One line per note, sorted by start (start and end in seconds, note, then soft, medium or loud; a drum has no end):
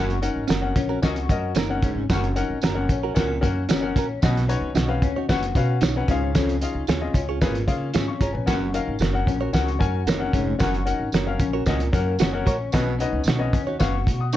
0.00 0.29 F#1 medium
0.00 0.18 F#2 medium
0.00 0.18 F#4 medium
0.10 closed hi-hat soft
0.22 0.43 C#4 medium
0.22 0.44 D#4 medium
0.22 0.42 F#4 medium
0.22 0.43 A#4 medium
0.22 0.43 F#5 medium
0.22 closed hi-hat medium
0.36 0.47 G#1 medium
0.48 0.72 F#1 medium
0.48 0.61 C#4 medium
0.48 0.62 F#4 medium
0.48 0.62 A#4 medium
0.48 snare loud
0.48 closed hi-hat medium
0.48 tambourine medium
0.61 0.82 C#4 medium
0.61 0.83 F#4 medium
0.61 0.83 A#4 medium
0.61 0.83 F#5 medium
0.76 0.98 A#1 medium
0.76 0.97 C#4 medium
0.76 kick medium
0.76 closed hi-hat medium
0.89 1.00 C#4 medium
0.89 0.99 F#4 medium
0.89 0.99 A#4 medium
1.02 1.25 C#2 medium
1.02 1.16 C#4 medium
1.02 1.16 F#4 medium
1.02 1.54 F#4 medium
1.02 1.16 A#4 medium
1.02 1.16 D#5 medium
1.02 kick medium
1.02 snare loud
1.02 closed hi-hat medium
1.02 tambourine medium
1.16 closed hi-hat soft
1.29 1.51 F#2 loud
1.29 1.50 C#4 medium
1.29 1.50 F#4 medium
1.29 1.50 A#4 medium
1.29 1.50 D#5 medium
1.29 kick medium
1.29 closed hi-hat medium
1.55 1.89 F#1 medium
1.55 1.68 C#4 medium
1.55 1.78 D#4 medium
1.55 1.69 F#4 medium
1.55 1.69 A#4 medium
1.55 snare loud
1.55 closed hi-hat medium
1.55 tambourine medium
1.70 1.90 C#4 medium
1.70 1.90 F#4 medium
1.70 1.90 A#4 medium
1.70 1.90 F#5 medium
1.82 2.05 G#2 medium
1.82 2.05 C#4 medium
1.82 kick medium
1.82 closed hi-hat medium
1.95 2.07 G#1 medium
2.10 2.43 F#1 medium
2.10 2.31 F#2 medium
2.10 2.23 C#4 medium
2.10 2.23 F#4 medium
2.10 2.32 F#4 medium
2.10 2.23 A#4 medium
2.10 2.24 F#5 medium
2.10 kick loud
2.10 snare loud
2.10 closed hi-hat medium
2.10 tambourine medium
2.24 closed hi-hat soft
2.36 2.56 C#4 medium
2.36 2.59 D#4 medium
2.36 2.56 F#4 medium
2.36 2.56 A#4 medium
2.36 2.56 F#5 medium
2.36 closed hi-hat medium
2.49 2.61 G#1 medium
2.62 2.85 F#1 medium
2.62 2.75 C#4 medium
2.62 2.76 F#4 medium
2.62 2.76 A#4 medium
2.62 snare loud
2.62 closed hi-hat medium
2.62 tambourine medium
2.75 2.96 C#4 medium
2.75 2.96 F#4 medium
2.75 2.96 A#4 medium
2.75 2.96 F#5 medium
2.89 3.11 A#1 medium
2.89 3.12 C#4 medium
2.89 kick medium
2.89 closed hi-hat medium
3.03 3.14 C#4 soft
3.03 3.13 F#4 medium
3.03 3.13 A#4 medium
3.14 3.39 C#2 medium
3.14 3.37 A#2 medium
3.14 3.29 C#4 medium
3.14 3.29 F#4 medium
3.14 3.29 A#4 medium
3.14 3.29 F#5 medium
3.14 kick medium
3.14 snare medium
3.14 closed hi-hat medium
3.14 tambourine medium
3.41 3.65 F#2 medium
3.41 3.64 A#3 medium
3.41 3.62 C#4 medium
3.41 3.62 F#4 medium
3.41 3.62 A#4 medium
3.41 3.62 F#5 medium
3.41 kick medium
3.41 closed hi-hat medium
3.69 3.91 F#1 medium
3.69 3.81 C#4 medium
3.69 4.20 C#4 medium
3.69 3.82 F#4 medium
3.69 3.82 A#4 medium
3.69 snare loud
3.69 closed hi-hat medium
3.69 tambourine loud
3.81 4.02 C#4 medium
3.81 4.02 F#4 medium
3.81 4.02 A#4 medium
3.81 4.03 F#5 medium
3.96 4.18 A#1 medium
3.96 4.06 C#4 medium
3.96 4.06 F#4 medium
3.96 4.07 A#4 medium
3.96 kick medium
3.96 closed hi-hat medium
4.22 4.56 B1 loud
4.22 4.99 B2 medium
4.22 4.44 B2 medium
4.22 4.43 B3 medium
4.22 4.36 C#4 medium
4.22 4.36 F#4 medium
4.22 4.36 B4 medium
4.22 4.36 D#5 medium
4.22 kick loud
4.22 snare loud
4.22 closed hi-hat medium
4.22 tambourine medium
4.37 snare soft
4.37 closed hi-hat soft
4.49 4.69 C#4 medium
4.49 4.70 D#4 medium
4.49 4.69 F#4 medium
4.49 4.69 B4 medium
4.49 4.69 C#5 medium
4.49 closed hi-hat medium
4.61 4.73 C#2 medium
4.75 4.97 B1 medium
4.75 4.88 D#4 medium
4.75 4.88 F#4 medium
4.75 4.89 C#5 medium
4.75 snare loud
4.75 closed hi-hat medium
4.75 tambourine medium
4.88 5.08 C#4 medium
4.88 5.09 F#4 medium
4.88 5.09 B4 medium
4.88 5.09 F5 medium
5.02 5.24 D#2 medium
5.02 5.24 C#4 medium
5.02 kick medium
5.02 closed hi-hat medium
5.16 5.26 D#4 soft
5.16 5.26 F#4 medium
5.16 5.26 C#5 medium
5.29 5.51 F#1 medium
5.29 5.42 C#4 medium
5.29 5.42 F#4 medium
5.29 5.79 F#4 medium
5.29 5.43 B4 medium
5.29 5.43 F#5 medium
5.29 kick medium
5.29 snare medium
5.29 closed hi-hat medium
5.29 tambourine medium
5.43 closed hi-hat soft
5.55 5.78 B2 loud
5.55 5.76 C#4 medium
5.55 5.76 F#4 medium
5.55 5.76 B4 medium
5.55 5.76 F5 medium
5.55 kick medium
5.55 closed hi-hat medium
5.81 6.04 B1 medium
5.81 5.94 D#4 medium
5.81 6.03 D#4 medium
5.81 5.94 F#4 medium
5.81 5.95 C#5 medium
5.81 snare loud
5.81 closed hi-hat medium
5.81 tambourine medium
5.96 6.08 C#4 medium
5.96 6.09 F#4 medium
5.96 6.10 B4 medium
5.96 6.10 F#5 medium
6.08 6.64 C#2 medium
6.08 6.30 G#2 medium
6.08 6.85 C#3 medium
6.08 6.29 C#4 medium
6.08 6.52 C#4 medium
6.08 6.52 F4 medium
6.08 6.52 G#4 medium
6.08 6.52 F5 medium
6.08 kick medium
6.08 closed hi-hat medium
6.35 6.56 F2 medium
6.35 6.56 C#4 medium
6.35 kick loud
6.35 snare loud
6.35 closed hi-hat medium
6.35 tambourine medium
6.49 closed hi-hat soft
6.61 6.82 C#4 medium
6.61 6.82 D#4 medium
6.61 6.82 F4 medium
6.61 6.82 G#4 medium
6.61 6.83 F5 medium
6.61 closed hi-hat medium
6.75 6.86 C#2 medium
6.87 7.11 D#2 medium
6.87 7.01 F4 medium
6.87 7.01 G#4 medium
6.87 7.01 C#5 loud
6.87 snare loud
6.87 closed hi-hat medium
6.87 tambourine medium
7.01 7.21 C#4 medium
7.01 7.22 F4 medium
7.01 7.21 G#4 medium
7.01 7.22 D#5 medium
7.14 7.43 C#2 medium
7.14 7.36 C#4 medium
7.14 kick medium
7.14 closed hi-hat medium
7.29 7.39 F4 soft
7.29 7.38 G#4 soft
7.29 7.38 C#5 medium
7.41 7.64 G#1 medium
7.41 7.63 A#2 medium
7.41 7.55 C#4 medium
7.41 7.55 F4 medium
7.41 7.55 G#4 medium
7.41 7.55 B4 medium
7.41 kick medium
7.41 snare medium
7.41 closed hi-hat medium
7.41 tambourine medium
7.55 closed hi-hat soft
7.67 7.90 C#3 medium
7.67 7.89 A#3 medium
7.67 7.88 C#4 medium
7.67 7.88 F4 medium
7.67 7.88 G#4 medium
7.67 7.88 F5 medium
7.67 kick medium
7.67 closed hi-hat medium
7.94 8.06 G#2 medium
7.94 8.44 C#4 medium
7.94 8.07 F4 medium
7.94 8.07 G#4 medium
7.94 8.07 C#5 medium
7.94 snare loud
7.94 closed hi-hat medium
7.94 tambourine medium
8.08 8.21 F5 soft
8.08 8.21 C#6 medium
8.21 8.32 G#1 medium
8.21 8.31 F4 medium
8.21 8.31 G#4 medium
8.21 8.34 C#5 soft
8.21 8.32 C#5 medium
8.21 8.34 A#5 medium
8.21 kick medium
8.21 closed hi-hat medium
8.33 8.46 A#1 medium
8.33 8.59 B4 soft
8.33 8.59 G#5 medium
8.46 8.81 F#1 medium
8.46 8.69 F#2 medium
8.46 8.60 C#4 medium
8.46 8.60 F#4 medium
8.46 8.69 F#4 medium
8.46 8.61 A#4 medium
8.46 8.61 F#5 medium
8.46 kick loud
8.46 snare loud
8.46 closed hi-hat medium
8.46 tambourine medium
8.74 8.94 C#4 medium
8.74 8.95 D#4 medium
8.74 8.95 F#4 medium
8.74 8.95 A#4 medium
8.74 8.95 F5 medium
8.74 closed hi-hat medium
8.87 8.99 G#1 medium
8.99 9.23 F#1 medium
8.99 9.13 F#4 medium
8.99 9.14 A#4 medium
8.99 9.14 C#5 medium
8.99 snare loud
8.99 closed hi-hat medium
8.99 tambourine medium
9.13 9.34 C#4 medium
9.13 9.34 F#4 medium
9.13 9.34 A#4 medium
9.13 9.35 F#5 medium
9.27 9.50 A#1 medium
9.27 9.48 C#4 medium
9.27 kick medium
9.27 closed hi-hat medium
9.41 9.51 F#4 medium
9.41 9.51 A#4 medium
9.41 9.50 C#5 medium
9.53 9.76 C#2 medium
9.53 9.67 C#4 medium
9.53 10.04 F#4 medium
9.53 9.67 F#4 medium
9.53 9.67 A#4 medium
9.53 9.68 F#5 medium
9.53 kick medium
9.53 snare medium
9.53 closed hi-hat medium
9.53 tambourine medium
9.68 closed hi-hat soft
9.79 10.03 F#2 loud
9.79 10.00 C#4 medium
9.79 10.00 F#4 medium
9.79 10.00 A#4 medium
9.79 10.00 G#5 medium
9.79 kick medium
9.79 closed hi-hat medium
10.06 10.29 F#1 medium
10.06 10.28 D#4 medium
10.06 10.20 F#4 medium
10.06 10.20 A#4 medium
10.06 10.21 C#5 medium
10.06 snare loud
10.06 closed hi-hat medium
10.06 tambourine medium
10.19 10.40 C#4 medium
10.19 10.40 F#4 medium
10.19 10.40 A#4 medium
10.19 10.41 F#5 medium
10.33 10.56 F1 medium
10.33 10.55 G#2 medium
10.33 10.55 C#4 medium
10.33 kick medium
10.33 closed hi-hat medium
10.59 10.94 F#1 medium
10.59 10.82 F#2 medium
10.59 10.73 C#4 medium
10.59 10.73 F#4 medium
10.59 10.82 F#4 medium
10.59 10.73 A#4 medium
10.59 10.73 F#5 medium
10.59 kick loud
10.59 snare loud
10.59 closed hi-hat medium
10.59 tambourine medium
10.74 closed hi-hat soft
10.86 11.06 C#4 medium
10.86 11.08 D#4 medium
10.86 11.06 F#4 medium
10.86 11.07 A#4 medium
10.86 11.07 F#5 medium
10.86 closed hi-hat medium
10.99 11.11 G#1 medium
11.12 11.35 F#1 medium
11.12 11.26 F#4 medium
11.12 11.27 A#4 medium
11.12 11.27 C#5 medium
11.12 snare loud
11.12 closed hi-hat medium
11.12 tambourine medium
11.27 11.47 C#4 medium
11.27 11.47 F#4 medium
11.27 11.47 A#4 medium
11.27 11.47 F5 medium
11.39 11.62 A#1 loud
11.39 11.61 C#4 medium
11.39 kick medium
11.39 closed hi-hat medium
11.53 11.64 F#4 medium
11.53 11.63 A#4 medium
11.53 11.63 C#5 medium
11.66 11.89 C#2 loud
11.66 11.88 A#2 medium
11.66 11.80 C#4 medium
11.66 11.80 F#4 medium
11.66 11.81 A#4 medium
11.66 11.81 D#5 medium
11.66 kick medium
11.66 snare medium
11.66 closed hi-hat medium
11.66 tambourine medium
11.80 closed hi-hat soft
11.93 12.15 F#2 loud
11.93 12.15 A#3 medium
11.93 12.13 C#4 medium
11.93 12.13 F#4 medium
11.93 12.14 A#4 medium
11.93 12.14 F#5 medium
11.93 kick loud
11.93 closed hi-hat medium
12.19 12.42 F#1 medium
12.19 12.70 C#4 medium
12.19 12.32 F#4 medium
12.19 12.33 A#4 medium
12.19 12.33 C#5 medium
12.19 12.33 F#5 medium
12.19 snare loud
12.19 closed hi-hat medium
12.19 tambourine medium
12.33 12.53 C#4 medium
12.33 12.54 F#4 medium
12.33 12.54 A#4 medium
12.33 12.54 F#5 medium
12.46 12.69 A#1 medium
12.46 12.56 F#4 medium
12.46 12.56 A#4 medium
12.46 12.57 C#5 medium
12.46 12.72 C#6 medium
12.46 kick medium
12.46 closed hi-hat medium
12.72 13.07 B1 medium
12.72 13.49 B2 medium
12.72 12.95 B2 medium
12.72 12.94 B3 medium
12.72 12.87 C#4 medium
12.72 12.86 F#4 medium
12.72 12.87 B4 medium
12.72 12.87 D#5 medium
12.72 kick loud
12.72 snare loud
12.72 closed hi-hat medium
12.72 tambourine medium
12.99 13.20 C#4 medium
12.99 13.20 D#4 medium
12.99 13.20 F#4 medium
12.99 13.21 B4 medium
12.99 13.21 D#5 medium
12.99 closed hi-hat medium
13.12 13.24 C#2 medium
13.24 13.48 B1 medium
13.24 closed hi-hat medium
13.24 tambourine medium
13.28 13.39 D#4 medium
13.28 13.40 F#4 medium
13.28 13.40 C#5 medium
13.28 snare loud
13.39 13.59 C#4 medium
13.39 13.60 F#4 medium
13.39 13.60 B4 medium
13.39 13.60 D#5 medium
13.53 13.76 D#2 medium
13.53 13.75 C#4 medium
13.53 kick medium
13.53 closed hi-hat medium
13.67 13.77 D#4 soft
13.67 13.77 F#4 medium
13.67 13.76 C#5 medium
13.79 14.08 F#1 loud
13.79 13.93 C#4 medium
13.79 14.30 F#4 medium
13.79 13.93 F#4 medium
13.79 13.93 B4 medium
13.79 13.94 F5 loud
13.79 kick medium
13.79 snare medium
13.79 closed hi-hat medium
13.79 tambourine medium
14.07 14.37 B2 medium
14.07 kick medium
14.07 closed hi-hat medium
14.20 14.33 F#5 medium
14.20 14.33 D#6 medium
14.33 14.37 D#4 medium
14.33 14.37 C#6 medium
14.33 closed hi-hat medium
14.33 tambourine medium